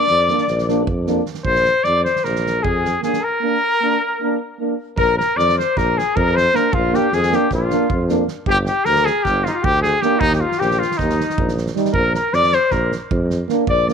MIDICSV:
0, 0, Header, 1, 7, 480
1, 0, Start_track
1, 0, Tempo, 390879
1, 1786, Time_signature, 9, 3, 24, 8
1, 7541, Tempo, 386598
1, 17216, End_track
2, 0, Start_track
2, 0, Title_t, "Flugelhorn"
2, 0, Program_c, 0, 56
2, 0, Note_on_c, 0, 74, 97
2, 1044, Note_off_c, 0, 74, 0
2, 1809, Note_on_c, 0, 72, 94
2, 2266, Note_on_c, 0, 74, 93
2, 2284, Note_off_c, 0, 72, 0
2, 2513, Note_off_c, 0, 74, 0
2, 2521, Note_on_c, 0, 72, 77
2, 2748, Note_on_c, 0, 70, 78
2, 2767, Note_off_c, 0, 72, 0
2, 3232, Note_on_c, 0, 68, 84
2, 3250, Note_off_c, 0, 70, 0
2, 3714, Note_off_c, 0, 68, 0
2, 3722, Note_on_c, 0, 68, 70
2, 3936, Note_on_c, 0, 70, 91
2, 3955, Note_off_c, 0, 68, 0
2, 5648, Note_off_c, 0, 70, 0
2, 6120, Note_on_c, 0, 70, 114
2, 6352, Note_off_c, 0, 70, 0
2, 6360, Note_on_c, 0, 70, 89
2, 6595, Note_on_c, 0, 74, 114
2, 6614, Note_off_c, 0, 70, 0
2, 6837, Note_off_c, 0, 74, 0
2, 6845, Note_on_c, 0, 72, 92
2, 7079, Note_on_c, 0, 70, 97
2, 7097, Note_off_c, 0, 72, 0
2, 7337, Note_on_c, 0, 68, 81
2, 7356, Note_off_c, 0, 70, 0
2, 7570, Note_on_c, 0, 70, 89
2, 7589, Note_off_c, 0, 68, 0
2, 7795, Note_on_c, 0, 72, 78
2, 7814, Note_off_c, 0, 70, 0
2, 8053, Note_on_c, 0, 70, 78
2, 8072, Note_off_c, 0, 72, 0
2, 8280, Note_on_c, 0, 65, 89
2, 8298, Note_off_c, 0, 70, 0
2, 8538, Note_on_c, 0, 67, 79
2, 8557, Note_off_c, 0, 65, 0
2, 8786, Note_on_c, 0, 68, 81
2, 8804, Note_off_c, 0, 67, 0
2, 9039, Note_on_c, 0, 67, 77
2, 9058, Note_off_c, 0, 68, 0
2, 9256, Note_off_c, 0, 67, 0
2, 9275, Note_on_c, 0, 65, 68
2, 9941, Note_off_c, 0, 65, 0
2, 10428, Note_on_c, 0, 67, 92
2, 10543, Note_off_c, 0, 67, 0
2, 10690, Note_on_c, 0, 67, 93
2, 10914, Note_on_c, 0, 70, 110
2, 10933, Note_off_c, 0, 67, 0
2, 11183, Note_on_c, 0, 68, 94
2, 11202, Note_off_c, 0, 70, 0
2, 11389, Note_on_c, 0, 67, 84
2, 11407, Note_off_c, 0, 68, 0
2, 11633, Note_on_c, 0, 65, 81
2, 11652, Note_off_c, 0, 67, 0
2, 11689, Note_on_c, 0, 63, 62
2, 11708, Note_off_c, 0, 65, 0
2, 11747, Note_on_c, 0, 65, 68
2, 11766, Note_off_c, 0, 63, 0
2, 11852, Note_on_c, 0, 67, 95
2, 11870, Note_off_c, 0, 65, 0
2, 12115, Note_off_c, 0, 67, 0
2, 12120, Note_on_c, 0, 68, 72
2, 12336, Note_on_c, 0, 67, 80
2, 12354, Note_off_c, 0, 68, 0
2, 12545, Note_on_c, 0, 63, 91
2, 12564, Note_off_c, 0, 67, 0
2, 12743, Note_off_c, 0, 63, 0
2, 12750, Note_on_c, 0, 67, 48
2, 12818, Note_on_c, 0, 65, 79
2, 12837, Note_off_c, 0, 67, 0
2, 13052, Note_on_c, 0, 67, 91
2, 13070, Note_off_c, 0, 65, 0
2, 13306, Note_on_c, 0, 65, 75
2, 13324, Note_off_c, 0, 67, 0
2, 13542, Note_on_c, 0, 63, 75
2, 13560, Note_off_c, 0, 65, 0
2, 14282, Note_off_c, 0, 63, 0
2, 14759, Note_on_c, 0, 70, 86
2, 14990, Note_off_c, 0, 70, 0
2, 15038, Note_on_c, 0, 70, 88
2, 15258, Note_on_c, 0, 74, 107
2, 15276, Note_off_c, 0, 70, 0
2, 15492, Note_on_c, 0, 72, 90
2, 15511, Note_off_c, 0, 74, 0
2, 15735, Note_on_c, 0, 70, 72
2, 15754, Note_off_c, 0, 72, 0
2, 15982, Note_off_c, 0, 70, 0
2, 16936, Note_on_c, 0, 74, 104
2, 17148, Note_off_c, 0, 74, 0
2, 17155, Note_on_c, 0, 74, 78
2, 17216, Note_off_c, 0, 74, 0
2, 17216, End_track
3, 0, Start_track
3, 0, Title_t, "Trumpet"
3, 0, Program_c, 1, 56
3, 0, Note_on_c, 1, 74, 120
3, 1052, Note_off_c, 1, 74, 0
3, 1785, Note_on_c, 1, 72, 122
3, 2255, Note_on_c, 1, 74, 120
3, 2274, Note_off_c, 1, 72, 0
3, 2497, Note_off_c, 1, 74, 0
3, 2505, Note_on_c, 1, 72, 93
3, 2751, Note_on_c, 1, 70, 91
3, 2770, Note_off_c, 1, 72, 0
3, 3227, Note_on_c, 1, 68, 96
3, 3245, Note_off_c, 1, 70, 0
3, 3711, Note_off_c, 1, 68, 0
3, 3729, Note_on_c, 1, 68, 84
3, 3976, Note_on_c, 1, 70, 112
3, 3994, Note_off_c, 1, 68, 0
3, 5668, Note_off_c, 1, 70, 0
3, 6111, Note_on_c, 1, 70, 104
3, 6347, Note_off_c, 1, 70, 0
3, 6356, Note_on_c, 1, 70, 105
3, 6595, Note_on_c, 1, 74, 120
3, 6613, Note_off_c, 1, 70, 0
3, 6849, Note_off_c, 1, 74, 0
3, 6861, Note_on_c, 1, 72, 91
3, 7093, Note_on_c, 1, 70, 100
3, 7111, Note_off_c, 1, 72, 0
3, 7344, Note_on_c, 1, 68, 85
3, 7362, Note_off_c, 1, 70, 0
3, 7562, Note_on_c, 1, 70, 104
3, 7581, Note_off_c, 1, 68, 0
3, 7817, Note_on_c, 1, 72, 117
3, 7836, Note_off_c, 1, 70, 0
3, 8056, Note_on_c, 1, 70, 101
3, 8075, Note_off_c, 1, 72, 0
3, 8278, Note_on_c, 1, 65, 97
3, 8297, Note_off_c, 1, 70, 0
3, 8552, Note_on_c, 1, 67, 86
3, 8570, Note_off_c, 1, 65, 0
3, 8781, Note_on_c, 1, 68, 100
3, 8799, Note_off_c, 1, 67, 0
3, 9041, Note_on_c, 1, 67, 88
3, 9060, Note_off_c, 1, 68, 0
3, 9257, Note_off_c, 1, 67, 0
3, 9282, Note_on_c, 1, 65, 83
3, 9944, Note_off_c, 1, 65, 0
3, 10463, Note_on_c, 1, 67, 127
3, 10570, Note_off_c, 1, 67, 0
3, 10690, Note_on_c, 1, 67, 101
3, 10906, Note_on_c, 1, 70, 117
3, 10924, Note_off_c, 1, 67, 0
3, 11157, Note_on_c, 1, 68, 102
3, 11176, Note_off_c, 1, 70, 0
3, 11383, Note_on_c, 1, 67, 101
3, 11402, Note_off_c, 1, 68, 0
3, 11642, Note_on_c, 1, 65, 76
3, 11661, Note_off_c, 1, 67, 0
3, 11680, Note_on_c, 1, 63, 68
3, 11699, Note_off_c, 1, 65, 0
3, 11760, Note_on_c, 1, 65, 98
3, 11778, Note_off_c, 1, 63, 0
3, 11893, Note_on_c, 1, 67, 118
3, 11912, Note_off_c, 1, 65, 0
3, 12105, Note_off_c, 1, 67, 0
3, 12113, Note_on_c, 1, 68, 105
3, 12351, Note_on_c, 1, 67, 101
3, 12370, Note_off_c, 1, 68, 0
3, 12581, Note_on_c, 1, 63, 122
3, 12600, Note_off_c, 1, 67, 0
3, 12760, Note_off_c, 1, 63, 0
3, 12767, Note_on_c, 1, 67, 65
3, 12836, Note_on_c, 1, 65, 89
3, 12855, Note_off_c, 1, 67, 0
3, 13070, Note_on_c, 1, 67, 92
3, 13089, Note_off_c, 1, 65, 0
3, 13315, Note_on_c, 1, 65, 90
3, 13334, Note_off_c, 1, 67, 0
3, 13541, Note_on_c, 1, 63, 81
3, 13560, Note_off_c, 1, 65, 0
3, 14282, Note_off_c, 1, 63, 0
3, 14734, Note_on_c, 1, 70, 105
3, 14976, Note_off_c, 1, 70, 0
3, 15006, Note_on_c, 1, 70, 97
3, 15239, Note_on_c, 1, 74, 123
3, 15257, Note_off_c, 1, 70, 0
3, 15486, Note_on_c, 1, 72, 103
3, 15505, Note_off_c, 1, 74, 0
3, 15703, Note_on_c, 1, 70, 83
3, 15722, Note_off_c, 1, 72, 0
3, 15965, Note_off_c, 1, 70, 0
3, 16923, Note_on_c, 1, 74, 99
3, 17151, Note_off_c, 1, 74, 0
3, 17176, Note_on_c, 1, 74, 94
3, 17216, Note_off_c, 1, 74, 0
3, 17216, End_track
4, 0, Start_track
4, 0, Title_t, "French horn"
4, 0, Program_c, 2, 60
4, 375, Note_on_c, 2, 62, 58
4, 568, Note_off_c, 2, 62, 0
4, 848, Note_on_c, 2, 62, 72
4, 1040, Note_off_c, 2, 62, 0
4, 1327, Note_on_c, 2, 62, 72
4, 1510, Note_off_c, 2, 62, 0
4, 3728, Note_on_c, 2, 62, 55
4, 3920, Note_off_c, 2, 62, 0
4, 4214, Note_on_c, 2, 62, 58
4, 4407, Note_off_c, 2, 62, 0
4, 4703, Note_on_c, 2, 62, 64
4, 4895, Note_off_c, 2, 62, 0
4, 5178, Note_on_c, 2, 62, 60
4, 5368, Note_off_c, 2, 62, 0
4, 5653, Note_on_c, 2, 62, 53
4, 5834, Note_off_c, 2, 62, 0
4, 8045, Note_on_c, 2, 62, 65
4, 8237, Note_off_c, 2, 62, 0
4, 8520, Note_on_c, 2, 62, 66
4, 8716, Note_off_c, 2, 62, 0
4, 9006, Note_on_c, 2, 62, 68
4, 9202, Note_off_c, 2, 62, 0
4, 9501, Note_on_c, 2, 62, 68
4, 9690, Note_off_c, 2, 62, 0
4, 9965, Note_on_c, 2, 62, 76
4, 10149, Note_off_c, 2, 62, 0
4, 12362, Note_on_c, 2, 62, 60
4, 12555, Note_off_c, 2, 62, 0
4, 14525, Note_on_c, 2, 63, 57
4, 14716, Note_off_c, 2, 63, 0
4, 16670, Note_on_c, 2, 62, 62
4, 16864, Note_off_c, 2, 62, 0
4, 17169, Note_on_c, 2, 62, 61
4, 17216, Note_off_c, 2, 62, 0
4, 17216, End_track
5, 0, Start_track
5, 0, Title_t, "Euphonium"
5, 0, Program_c, 3, 58
5, 357, Note_on_c, 3, 58, 59
5, 554, Note_off_c, 3, 58, 0
5, 835, Note_on_c, 3, 58, 65
5, 1029, Note_off_c, 3, 58, 0
5, 1317, Note_on_c, 3, 58, 68
5, 1502, Note_off_c, 3, 58, 0
5, 3714, Note_on_c, 3, 58, 60
5, 3909, Note_off_c, 3, 58, 0
5, 4192, Note_on_c, 3, 58, 61
5, 4390, Note_off_c, 3, 58, 0
5, 4679, Note_on_c, 3, 58, 56
5, 4877, Note_off_c, 3, 58, 0
5, 5184, Note_on_c, 3, 58, 56
5, 5374, Note_off_c, 3, 58, 0
5, 5647, Note_on_c, 3, 58, 49
5, 5830, Note_off_c, 3, 58, 0
5, 8026, Note_on_c, 3, 58, 68
5, 8222, Note_off_c, 3, 58, 0
5, 8515, Note_on_c, 3, 58, 68
5, 8712, Note_off_c, 3, 58, 0
5, 8993, Note_on_c, 3, 58, 72
5, 9192, Note_off_c, 3, 58, 0
5, 9495, Note_on_c, 3, 58, 75
5, 9686, Note_off_c, 3, 58, 0
5, 9976, Note_on_c, 3, 58, 75
5, 10158, Note_off_c, 3, 58, 0
5, 12370, Note_on_c, 3, 58, 72
5, 12561, Note_off_c, 3, 58, 0
5, 14514, Note_on_c, 3, 55, 65
5, 14708, Note_off_c, 3, 55, 0
5, 16669, Note_on_c, 3, 58, 78
5, 16863, Note_off_c, 3, 58, 0
5, 17153, Note_on_c, 3, 58, 64
5, 17216, Note_off_c, 3, 58, 0
5, 17216, End_track
6, 0, Start_track
6, 0, Title_t, "Tuba"
6, 0, Program_c, 4, 58
6, 113, Note_on_c, 4, 41, 89
6, 380, Note_off_c, 4, 41, 0
6, 599, Note_on_c, 4, 34, 97
6, 1091, Note_on_c, 4, 41, 87
6, 1109, Note_off_c, 4, 34, 0
6, 1475, Note_off_c, 4, 41, 0
6, 1795, Note_on_c, 4, 34, 92
6, 2061, Note_off_c, 4, 34, 0
6, 2276, Note_on_c, 4, 41, 90
6, 2544, Note_off_c, 4, 41, 0
6, 2768, Note_on_c, 4, 34, 91
6, 3244, Note_on_c, 4, 41, 80
6, 3262, Note_off_c, 4, 34, 0
6, 3631, Note_off_c, 4, 41, 0
6, 6107, Note_on_c, 4, 34, 89
6, 6374, Note_off_c, 4, 34, 0
6, 6590, Note_on_c, 4, 41, 97
6, 6857, Note_off_c, 4, 41, 0
6, 7082, Note_on_c, 4, 34, 101
6, 7347, Note_off_c, 4, 34, 0
6, 7565, Note_on_c, 4, 41, 100
6, 7950, Note_off_c, 4, 41, 0
6, 8279, Note_on_c, 4, 34, 97
6, 8543, Note_off_c, 4, 34, 0
6, 8760, Note_on_c, 4, 41, 94
6, 9026, Note_off_c, 4, 41, 0
6, 9253, Note_on_c, 4, 34, 104
6, 9518, Note_off_c, 4, 34, 0
6, 9742, Note_on_c, 4, 41, 93
6, 10124, Note_off_c, 4, 41, 0
6, 10433, Note_on_c, 4, 31, 98
6, 10700, Note_off_c, 4, 31, 0
6, 10923, Note_on_c, 4, 38, 90
6, 11189, Note_off_c, 4, 38, 0
6, 11406, Note_on_c, 4, 31, 95
6, 11672, Note_off_c, 4, 31, 0
6, 11881, Note_on_c, 4, 38, 88
6, 12268, Note_off_c, 4, 38, 0
6, 12595, Note_on_c, 4, 39, 107
6, 12860, Note_off_c, 4, 39, 0
6, 13087, Note_on_c, 4, 34, 94
6, 13351, Note_off_c, 4, 34, 0
6, 13568, Note_on_c, 4, 39, 90
6, 13833, Note_off_c, 4, 39, 0
6, 14048, Note_on_c, 4, 34, 89
6, 14432, Note_off_c, 4, 34, 0
6, 14747, Note_on_c, 4, 34, 104
6, 15013, Note_off_c, 4, 34, 0
6, 15227, Note_on_c, 4, 41, 87
6, 15496, Note_off_c, 4, 41, 0
6, 15712, Note_on_c, 4, 34, 99
6, 15981, Note_off_c, 4, 34, 0
6, 16191, Note_on_c, 4, 41, 104
6, 16578, Note_off_c, 4, 41, 0
6, 16902, Note_on_c, 4, 34, 93
6, 17169, Note_off_c, 4, 34, 0
6, 17216, End_track
7, 0, Start_track
7, 0, Title_t, "Drums"
7, 88, Note_on_c, 9, 38, 21
7, 211, Note_off_c, 9, 38, 0
7, 348, Note_on_c, 9, 38, 25
7, 466, Note_off_c, 9, 38, 0
7, 466, Note_on_c, 9, 38, 23
7, 583, Note_off_c, 9, 38, 0
7, 583, Note_on_c, 9, 38, 25
7, 706, Note_off_c, 9, 38, 0
7, 718, Note_on_c, 9, 38, 23
7, 841, Note_off_c, 9, 38, 0
7, 843, Note_on_c, 9, 38, 25
7, 966, Note_off_c, 9, 38, 0
7, 1072, Note_on_c, 9, 36, 82
7, 1194, Note_off_c, 9, 36, 0
7, 1312, Note_on_c, 9, 38, 24
7, 1435, Note_off_c, 9, 38, 0
7, 1546, Note_on_c, 9, 38, 24
7, 1649, Note_off_c, 9, 38, 0
7, 1649, Note_on_c, 9, 38, 25
7, 1772, Note_off_c, 9, 38, 0
7, 1776, Note_on_c, 9, 36, 69
7, 1898, Note_off_c, 9, 36, 0
7, 1910, Note_on_c, 9, 38, 23
7, 2028, Note_off_c, 9, 38, 0
7, 2028, Note_on_c, 9, 38, 24
7, 2151, Note_off_c, 9, 38, 0
7, 2262, Note_on_c, 9, 38, 21
7, 2385, Note_off_c, 9, 38, 0
7, 2522, Note_on_c, 9, 38, 23
7, 2645, Note_off_c, 9, 38, 0
7, 2652, Note_on_c, 9, 38, 26
7, 2762, Note_off_c, 9, 38, 0
7, 2762, Note_on_c, 9, 38, 28
7, 2884, Note_off_c, 9, 38, 0
7, 2893, Note_on_c, 9, 38, 27
7, 3016, Note_off_c, 9, 38, 0
7, 3026, Note_on_c, 9, 38, 27
7, 3149, Note_off_c, 9, 38, 0
7, 3248, Note_on_c, 9, 36, 84
7, 3371, Note_off_c, 9, 36, 0
7, 3502, Note_on_c, 9, 38, 30
7, 3625, Note_off_c, 9, 38, 0
7, 3718, Note_on_c, 9, 38, 31
7, 3841, Note_off_c, 9, 38, 0
7, 3847, Note_on_c, 9, 38, 29
7, 3970, Note_off_c, 9, 38, 0
7, 6110, Note_on_c, 9, 36, 80
7, 6232, Note_off_c, 9, 36, 0
7, 6389, Note_on_c, 9, 38, 33
7, 6512, Note_off_c, 9, 38, 0
7, 6620, Note_on_c, 9, 38, 29
7, 6742, Note_off_c, 9, 38, 0
7, 6743, Note_on_c, 9, 38, 28
7, 6866, Note_off_c, 9, 38, 0
7, 6871, Note_on_c, 9, 38, 29
7, 6993, Note_off_c, 9, 38, 0
7, 7084, Note_on_c, 9, 36, 74
7, 7094, Note_on_c, 9, 38, 28
7, 7207, Note_off_c, 9, 36, 0
7, 7217, Note_off_c, 9, 38, 0
7, 7354, Note_on_c, 9, 38, 32
7, 7477, Note_off_c, 9, 38, 0
7, 7574, Note_on_c, 9, 36, 88
7, 7698, Note_off_c, 9, 36, 0
7, 7831, Note_on_c, 9, 38, 27
7, 7955, Note_off_c, 9, 38, 0
7, 8049, Note_on_c, 9, 38, 29
7, 8173, Note_off_c, 9, 38, 0
7, 8273, Note_on_c, 9, 36, 96
7, 8397, Note_off_c, 9, 36, 0
7, 8537, Note_on_c, 9, 38, 29
7, 8661, Note_off_c, 9, 38, 0
7, 8763, Note_on_c, 9, 38, 27
7, 8888, Note_off_c, 9, 38, 0
7, 8891, Note_on_c, 9, 38, 31
7, 9009, Note_off_c, 9, 38, 0
7, 9009, Note_on_c, 9, 38, 27
7, 9133, Note_off_c, 9, 38, 0
7, 9238, Note_on_c, 9, 36, 65
7, 9240, Note_on_c, 9, 38, 30
7, 9362, Note_off_c, 9, 36, 0
7, 9364, Note_off_c, 9, 38, 0
7, 9481, Note_on_c, 9, 38, 31
7, 9605, Note_off_c, 9, 38, 0
7, 9723, Note_on_c, 9, 36, 88
7, 9847, Note_off_c, 9, 36, 0
7, 9962, Note_on_c, 9, 38, 31
7, 10086, Note_off_c, 9, 38, 0
7, 10197, Note_on_c, 9, 38, 27
7, 10321, Note_off_c, 9, 38, 0
7, 10423, Note_on_c, 9, 36, 90
7, 10547, Note_off_c, 9, 36, 0
7, 10668, Note_on_c, 9, 38, 29
7, 10792, Note_off_c, 9, 38, 0
7, 10906, Note_on_c, 9, 38, 25
7, 11030, Note_off_c, 9, 38, 0
7, 11035, Note_on_c, 9, 38, 29
7, 11159, Note_off_c, 9, 38, 0
7, 11171, Note_on_c, 9, 38, 26
7, 11295, Note_off_c, 9, 38, 0
7, 11401, Note_on_c, 9, 36, 62
7, 11409, Note_on_c, 9, 38, 30
7, 11525, Note_off_c, 9, 36, 0
7, 11534, Note_off_c, 9, 38, 0
7, 11660, Note_on_c, 9, 38, 31
7, 11784, Note_off_c, 9, 38, 0
7, 11887, Note_on_c, 9, 36, 93
7, 12011, Note_off_c, 9, 36, 0
7, 12137, Note_on_c, 9, 38, 31
7, 12261, Note_off_c, 9, 38, 0
7, 12358, Note_on_c, 9, 38, 27
7, 12482, Note_off_c, 9, 38, 0
7, 12590, Note_on_c, 9, 36, 96
7, 12714, Note_off_c, 9, 36, 0
7, 12739, Note_on_c, 9, 38, 28
7, 12863, Note_off_c, 9, 38, 0
7, 12975, Note_on_c, 9, 38, 24
7, 13093, Note_off_c, 9, 38, 0
7, 13093, Note_on_c, 9, 38, 27
7, 13210, Note_off_c, 9, 38, 0
7, 13210, Note_on_c, 9, 38, 28
7, 13334, Note_off_c, 9, 38, 0
7, 13352, Note_on_c, 9, 38, 26
7, 13467, Note_off_c, 9, 38, 0
7, 13467, Note_on_c, 9, 38, 30
7, 13563, Note_on_c, 9, 36, 70
7, 13566, Note_off_c, 9, 38, 0
7, 13566, Note_on_c, 9, 38, 30
7, 13687, Note_off_c, 9, 36, 0
7, 13691, Note_off_c, 9, 38, 0
7, 13695, Note_on_c, 9, 38, 32
7, 13820, Note_off_c, 9, 38, 0
7, 13827, Note_on_c, 9, 38, 33
7, 13943, Note_off_c, 9, 38, 0
7, 13943, Note_on_c, 9, 38, 25
7, 14047, Note_on_c, 9, 36, 96
7, 14067, Note_off_c, 9, 38, 0
7, 14171, Note_off_c, 9, 36, 0
7, 14173, Note_on_c, 9, 38, 30
7, 14290, Note_off_c, 9, 38, 0
7, 14290, Note_on_c, 9, 38, 35
7, 14403, Note_off_c, 9, 38, 0
7, 14403, Note_on_c, 9, 38, 31
7, 14522, Note_off_c, 9, 38, 0
7, 14522, Note_on_c, 9, 38, 30
7, 14628, Note_off_c, 9, 38, 0
7, 14628, Note_on_c, 9, 38, 29
7, 14737, Note_on_c, 9, 36, 85
7, 14752, Note_off_c, 9, 38, 0
7, 14862, Note_off_c, 9, 36, 0
7, 14997, Note_on_c, 9, 38, 31
7, 15121, Note_off_c, 9, 38, 0
7, 15227, Note_on_c, 9, 38, 28
7, 15351, Note_off_c, 9, 38, 0
7, 15351, Note_on_c, 9, 38, 29
7, 15469, Note_off_c, 9, 38, 0
7, 15469, Note_on_c, 9, 38, 27
7, 15593, Note_off_c, 9, 38, 0
7, 15697, Note_on_c, 9, 38, 31
7, 15707, Note_on_c, 9, 36, 71
7, 15821, Note_off_c, 9, 38, 0
7, 15831, Note_off_c, 9, 36, 0
7, 15958, Note_on_c, 9, 38, 33
7, 16082, Note_off_c, 9, 38, 0
7, 16193, Note_on_c, 9, 36, 96
7, 16318, Note_off_c, 9, 36, 0
7, 16433, Note_on_c, 9, 38, 29
7, 16558, Note_off_c, 9, 38, 0
7, 16669, Note_on_c, 9, 38, 29
7, 16793, Note_off_c, 9, 38, 0
7, 16893, Note_on_c, 9, 36, 87
7, 17017, Note_off_c, 9, 36, 0
7, 17159, Note_on_c, 9, 38, 33
7, 17216, Note_off_c, 9, 38, 0
7, 17216, End_track
0, 0, End_of_file